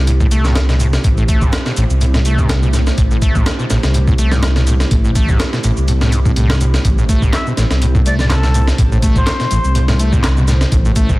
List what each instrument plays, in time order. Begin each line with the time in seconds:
Already playing: detuned saw bass C2, ambient pad A3 E4 G4 C5
0.07 acid bass A2, closed hi-hat, shaker
0.20 acid bass A2, kick, shaker
0.31 acid bass A3, closed hi-hat, shaker
0.45 acid bass G2, snare, shaker
0.56 acid bass A1, snare, closed hi-hat, shaker
0.69 acid bass B2, snare, shaker
0.80 acid bass A2, closed hi-hat, shaker
0.93 snare, shaker
1.04 detuned saw bass A1, acid bass A2, kick, closed hi-hat, shaker
1.17 acid bass A2, shaker
1.28 acid bass A3, kick, closed hi-hat, shaker
1.41 acid bass G2, kick, shaker
1.52 acid bass A1, snare, closed hi-hat, shaker
1.66 acid bass B2, snare, shaker
1.77 detuned saw bass A1, acid bass A2, closed hi-hat, shaker
1.90 detuned saw bass C2, shaker
2.01 acid bass A2, closed hi-hat, shaker
2.14 acid bass A2, snare, shaker
2.25 acid bass A3, closed hi-hat, shaker
2.38 acid bass G2, kick, shaker
2.49 acid bass A1, snare, closed hi-hat, shaker
2.63 acid bass B2, shaker
2.73 acid bass A2, snare, closed hi-hat, shaker
2.87 snare, shaker
2.98 detuned saw bass A1, acid bass A2, kick, closed hi-hat, shaker
3.11 acid bass A2, shaker
3.22 acid bass A3, kick, closed hi-hat, shaker
3.35 acid bass G2, kick, shaker
3.46 acid bass A1, snare, closed hi-hat, shaker
3.59 acid bass B2, shaker
3.70 detuned saw bass A1, acid bass A2, snare, closed hi-hat, shaker
3.83 detuned saw bass C2, snare, shaker
3.94 acid bass A2, closed hi-hat, shaker
4.08 acid bass A2, kick, shaker
4.18 acid bass A3, closed hi-hat, shaker
4.32 acid bass G2, snare, shaker
4.43 acid bass A1, snare, closed hi-hat, shaker
4.56 acid bass B2, snare, shaker
4.67 acid bass A2, closed hi-hat, shaker
4.80 snare, shaker
4.91 detuned saw bass A1, acid bass A2, kick, closed hi-hat, shaker
5.05 acid bass A2, shaker
5.15 acid bass A3, kick, closed hi-hat, shaker
5.29 acid bass G2, kick, shaker
5.40 acid bass A1, snare, closed hi-hat, shaker
5.53 acid bass B2, snare, shaker
5.64 detuned saw bass A1, acid bass A2, closed hi-hat, shaker
5.77 detuned saw bass C2, shaker
5.88 acid bass A2, closed hi-hat, shaker
6.01 acid bass A2, snare, shaker
6.12 acid bass G2, closed hi-hat, shaker
6.25 acid bass A2, kick, shaker
6.36 acid bass A2, closed hi-hat, shaker
6.50 acid bass G2, snare, shaker
6.61 acid bass A2, closed hi-hat, shaker
6.74 snare, shaker
6.85 detuned saw bass A1, acid bass A2, ambient pad C5, kick, closed hi-hat, shaker
6.98 acid bass A2, shaker
7.09 acid bass A3, kick, closed hi-hat, shaker
7.22 acid bass G2, kick, shaker
7.33 acid bass A1, flute E5, snare, clap, closed hi-hat, shaker
7.47 acid bass B2, shaker
7.57 detuned saw bass A1, acid bass A2, snare, closed hi-hat, shaker
7.71 detuned saw bass C2, snare, shaker
7.82 acid bass A2, closed hi-hat, shaker
7.95 acid bass A2, kick, shaker
8.06 acid bass A3, flute D5, closed hi-hat, shaker
8.19 acid bass G2, flute D5, snare, shaker
8.30 acid bass A1, flute A4, snare, clap, closed hi-hat, shaker
8.43 acid bass B2, snare, shaker
8.54 acid bass A2, closed hi-hat, shaker
8.67 snare, shaker
8.78 detuned saw bass A1, acid bass A2, kick, closed hi-hat, shaker
8.92 acid bass A2, shaker
9.02 acid bass A3, kick, closed hi-hat, shaker
9.16 acid bass G2, flute C5, kick, shaker
9.27 acid bass A1, snare, clap, closed hi-hat, shaker
9.40 acid bass B2, snare, shaker
9.51 detuned saw bass A1, acid bass A2, closed hi-hat, shaker
9.64 detuned saw bass C2, shaker
9.75 acid bass A2, closed hi-hat, shaker
9.88 acid bass A2, snare, shaker
9.99 acid bass A3, closed hi-hat, shaker
10.13 acid bass G2, kick, shaker
10.24 acid bass A1, snare, clap, closed hi-hat, shaker
10.37 acid bass B2, shaker
10.48 acid bass A2, snare, closed hi-hat, shaker
10.61 snare, shaker
10.72 detuned saw bass A1, acid bass A2, kick, closed hi-hat, shaker
10.85 acid bass A2, shaker
10.96 acid bass A3, kick, closed hi-hat, shaker
11.09 acid bass G2, kick, shaker